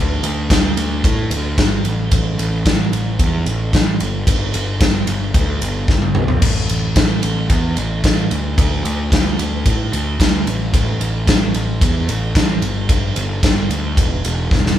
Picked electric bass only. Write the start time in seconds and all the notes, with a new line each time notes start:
Already playing: D2
0.23 D2
0.50 D2
0.77 D2
1.04 A2
1.31 D2
1.58 G#1
1.84 A1
2.12 A1
2.39 A1
2.92 A1
3.19 E2
3.46 A1
3.73 A1
4.00 G1
4.27 G1
4.54 G1
4.81 G1
5.07 G1
5.34 D2
5.61 G1
5.88 G1
6.15 B1
6.42 A1
6.70 A1
6.96 A1
7.23 A1
7.49 E2
7.78 A1
8.04 A1
8.31 D2
8.58 D2
8.84 D2
9.12 D2
9.39 D2
9.66 A2
9.93 D2
10.19 D2
10.47 A1
10.73 A1
11.00 A1
11.28 A1
11.55 A1
11.81 E2
12.08 A1
12.35 A1
12.62 G1
12.89 G1
13.16 G1
13.43 G1
13.70 D2
13.97 E1
14.24 E1
14.51 E1